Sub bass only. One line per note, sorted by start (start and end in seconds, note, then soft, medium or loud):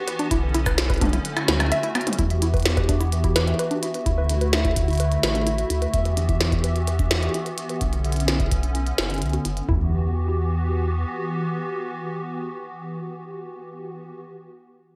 0.31 1.19 B1 medium
1.48 1.72 D2 medium
2.19 3.54 E2 loud
4.06 5.18 D2 loud
5.23 5.65 A1 medium
5.70 5.87 D2 medium
5.94 7.29 E2 medium
7.81 8.93 B1 loud
8.98 9.23 F#1 medium
9.22 9.38 C#2 medium
9.45 9.62 F#1 medium
9.69 11.05 E2 medium